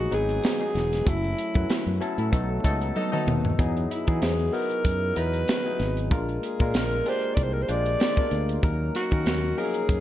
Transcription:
Already playing: F#3 G#3 B3 D#4 F#4 G#4
0.11 G#1 F#3 G#3 B3 D#4 G#4 B4, closed hi-hat
0.29 closed hi-hat
0.43 snare, closed hi-hat
0.60 F#3 G#3 B3 D#4 G#4, closed hi-hat
0.75 E1, snare, closed hi-hat
0.93 snare, closed hi-hat
1.05 F#1 F#3 A3 C#4 E4 A4, kick, closed hi-hat
1.24 closed hi-hat
1.39 closed hi-hat
1.54 F#2 F#3 A3 C#4 E4 B4, kick, closed hi-hat
1.70 muted fingered electric bass stroke, snare, closed hi-hat
1.86 F#2, closed hi-hat
2.00 F#3 A3 C#4 E4 A4, closed hi-hat
2.18 A2 F#3 E4 A4, closed hi-hat
2.32 B1 F#3 A3 B3 D#4 A4, kick, closed hi-hat
2.64 C#2 F#3 A3 B3 D#4 A4, kick, closed hi-hat
2.81 closed hi-hat
2.96 F#3 D#4 A4, high tom
3.12 F#3 A3 B3 D#4 A4, mid tom
3.27 D#2, mid tom
3.45 floor tom
3.58 E2 F#3 B3 D#4 E4 G#4, kick, closed hi-hat
3.77 closed hi-hat
3.91 E4, closed hi-hat
4.07 E3 F#3 B3 D#4 E4 G#4, kick, closed hi-hat
4.22 E2 G#4, snare, closed hi-hat
4.39 closed hi-hat
4.53 F#3 B3 D#4 E4 F#4 A#4, open hi-hat
4.70 closed hi-hat
4.85 F#2, kick, closed hi-hat
5.16 E2 F#3 B3 D#4 E4 B4 A#5, closed hi-hat
5.34 closed hi-hat
5.48 snare, closed hi-hat
5.64 F#3 B3 D#4 E4 G#4
5.80 G#1, snare, closed hi-hat
5.97 closed hi-hat
6.11 A#1 G#3 A#3 D4 F4 A#4, kick, closed hi-hat
6.29 closed hi-hat
6.43 G#4, closed hi-hat
6.59 A#2 G#3 A#3 D4 F4 A#4, kick, closed hi-hat
6.74 A#1 A#4, snare, closed hi-hat
6.91 closed hi-hat
7.05 G#3 A#3 D4 F4 G4 C5, open hi-hat
7.22 closed hi-hat
7.34 C2 D5, kick, closed hi-hat
7.43 C5
7.53 A#4
7.62 C5
7.68 A#1 G#3 A#3 D4 F4 C5 D5, closed hi-hat
7.86 closed hi-hat
8.00 snare, closed hi-hat
8.16 G#3 A#3 D4 F4 A#4, kick, closed hi-hat
8.31 D2, closed hi-hat
8.49 closed hi-hat
8.63 D#2 F#3 A#3 C#4 D#4 A#4, kick, closed hi-hat
8.95 F#4, snare, closed hi-hat
9.11 D#3 F#3 A#3 C#4 D#4 A#4, kick, closed hi-hat
9.26 D#2, snare, closed hi-hat
9.57 F3 A#3 C#4 D#4 G#4 A#4, open hi-hat
9.64 F#3
9.74 closed hi-hat
9.89 F#2, kick, closed hi-hat

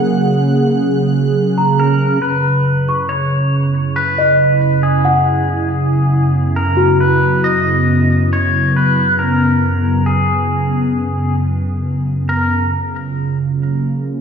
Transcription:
Already playing: C#3 F#3 A#3 G#4 F#5 F#6
1.58 A#5
1.80 A#4
2.22 F#2 B4
2.65 E4
2.89 C#6
3.09 C#5
3.52 B3
3.96 B4
4.18 D#5
4.83 G#4
5.05 F#5
6.56 A#4
6.77 F#4
7.00 B4
7.44 D#5
8.33 C#5
8.76 B4
9.19 A#4
10.06 G#4
12.29 A#4
12.75 C#3
12.96 F4
13.33 F#3
13.59 A#3
13.94 G#4

